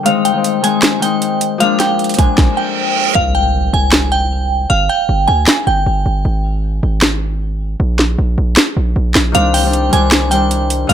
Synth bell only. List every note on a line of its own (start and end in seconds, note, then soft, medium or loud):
0.06 0.24 F5 loud
0.25 0.61 G5 medium
0.64 1.00 G#5 medium
1.02 1.57 G5 medium
1.60 1.78 F5 loud
1.80 2.16 G5 medium
2.19 2.55 G#5 medium
2.57 3.12 G5 medium
3.15 3.33 F5 loud
3.35 3.71 G5 medium
3.74 4.10 G#5 medium
4.12 4.66 G5 medium
4.70 4.88 F5 loud
4.89 5.26 G5 medium
5.28 5.64 G#5 medium
5.67 6.22 G5 medium
9.35 9.53 F5 loud
9.54 9.90 G5 medium
9.93 10.29 G#5 medium
10.31 10.86 G5 medium
10.89 10.93 F5 loud